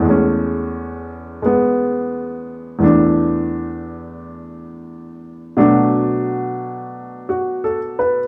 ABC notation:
X:1
M:4/4
L:1/8
Q:"Swing" 1/4=87
K:A
V:1 name="Upright piano"
z8 | z8 | z4 z F A B |]
V:2 name="Upright piano" clef=bass
[E,,G,A,C]4 [G,B,]4 | [E,,E,A,D]8 | [B,,F,A,D]8 |]